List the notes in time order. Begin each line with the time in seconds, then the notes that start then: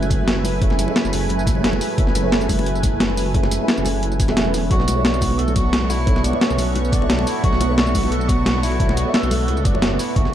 Already playing: F#1 F#3 A3 C#4 E4 G#4 A4 B4 E5 G#5
0.03 tambourine, muted conga
0.10 kick, closed hi-hat, tambourine
0.28 snare, closed hi-hat, muted conga
0.37 high conga
0.45 open hi-hat, tambourine, muted conga
0.60 F#3 C#4 G#4 A4 E5, kick, closed hi-hat
0.70 snare, muted conga
0.79 closed hi-hat, tambourine, high conga
0.85 F#3 C#4 G#4 A4 B4, muted conga
0.90 E5
0.96 snare, closed hi-hat
1.05 F#1, tambourine
1.13 open hi-hat, tambourine, muted conga, high conga
1.29 closed hi-hat, muted conga
1.39 tambourine
1.47 kick, closed hi-hat, tambourine
1.55 F#1 F#3 C#4 G#4 A4 B4 E5, muted conga
1.63 F#3 C#4 G#4 A4 B4 G#5, snare, closed hi-hat
1.73 muted conga, high conga
1.81 open hi-hat, tambourine
1.97 F#1 F#3 C#4 G#4 A4 B4 E5, kick, closed hi-hat, muted conga
2.07 snare
2.15 closed hi-hat, tambourine, muted conga, high conga
2.22 F#3 C#4 G#4 A4 B4
2.26 E5
2.32 snare, closed hi-hat
2.41 tambourine, muted conga
2.49 kick, open hi-hat, tambourine, high conga
2.59 muted conga
2.66 closed hi-hat
2.75 tambourine
2.83 kick, closed hi-hat, tambourine, muted conga
3.00 snare, closed hi-hat, muted conga
3.10 high conga
3.17 open hi-hat, tambourine
3.26 muted conga
3.33 F#3 C#4 G#4 A4 B4 E5, kick, closed hi-hat
3.43 snare, muted conga
3.51 closed hi-hat, tambourine, high conga
3.58 F#3 C#4 G#4 A4 B4
3.63 E5
3.68 snare, closed hi-hat, muted conga
3.77 F#1, tambourine
3.85 open hi-hat, tambourine, muted conga, high conga
4.03 closed hi-hat
4.12 tambourine, muted conga
4.20 kick, closed hi-hat, tambourine
4.26 F#1 F#3 C#4 G#4 A4 B4, snare, muted conga
4.31 E5
4.37 E1, snare, closed hi-hat
4.45 high conga
4.54 snare, open hi-hat, tambourine, muted conga
4.70 B1 A3 B3 F#4 A4 C#5 D5 E5 C#6, kick, closed hi-hat
4.80 snare
4.88 closed hi-hat, tambourine, muted conga, high conga
4.95 B3 A4 C#5 D5
4.99 E5
5.05 F#4, snare, closed hi-hat, muted conga
5.14 tambourine
5.21 kick, open hi-hat, tambourine, high conga
5.31 muted conga
5.39 A4, closed hi-hat
5.48 tambourine, muted conga
5.56 F#4, kick, closed hi-hat, tambourine
5.73 snare, closed hi-hat, muted conga
5.83 high conga
5.90 E4, open hi-hat, tambourine, muted conga
6.06 B3 A4 C#5 D5 E5, kick, closed hi-hat
6.16 snare, muted conga
6.24 D4, closed hi-hat, tambourine, high conga
6.31 B3 A4 B4 C#5, muted conga
6.36 E5
6.41 C#4, snare, closed hi-hat
6.50 B1, tambourine
6.58 open hi-hat, tambourine, muted conga, high conga
6.75 closed hi-hat, muted conga
6.85 tambourine
6.92 D4, kick, closed hi-hat, tambourine
7.00 B1 B3 A4 C#5 D5 E5, muted conga
7.09 B3 A4 C#5 D5 A5, snare, closed hi-hat
7.18 muted conga, high conga
7.27 E4, open hi-hat, tambourine
7.42 B1 B3 F#4 A4 C#5 D5 E5, kick, closed hi-hat, muted conga
7.53 snare
7.60 closed hi-hat, tambourine, muted conga, high conga
7.67 B3 A4 C#5 D5
7.72 E5
7.78 F#4, snare, closed hi-hat
7.86 tambourine, muted conga
7.94 kick, open hi-hat, tambourine, high conga
8.03 muted conga
8.12 A4, closed hi-hat
8.21 tambourine
8.29 F#4, kick, closed hi-hat, tambourine, muted conga
8.46 snare, closed hi-hat, muted conga
8.55 high conga
8.63 E4, open hi-hat, tambourine
8.72 muted conga
8.78 B3 A4 C#5 D5 E5, kick, closed hi-hat
8.89 snare, muted conga
8.97 F#4, closed hi-hat, tambourine, high conga
9.04 B3 A4 C#5 D5
9.08 E5
9.14 A4, snare, closed hi-hat, muted conga
9.23 B1, tambourine
9.31 open hi-hat, tambourine, muted conga, high conga
9.48 C#2, closed hi-hat
9.57 tambourine, muted conga
9.65 F#1 D4, kick, closed hi-hat, tambourine
9.72 B3 A4 C#5 D5, muted conga
9.76 E5
9.82 snare, closed hi-hat
9.91 high conga
9.99 E4, open hi-hat, tambourine, muted conga
10.15 F#1 F#3 C#4 F#4 G#4 A4 B4 E5 G#5, kick, closed hi-hat
10.25 snare